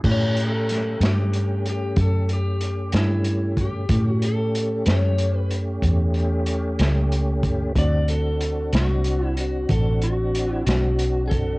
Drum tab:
CC |x-----------|------------|------------|
HH |-xxxxxxxxxxx|xxxxxxxxxxxx|xxxxxxxxxxxx|
SD |--oo-----o--|---o-----o--|---o-----o--|
BD |o-----o----o|o-----o----o|o-----o----o|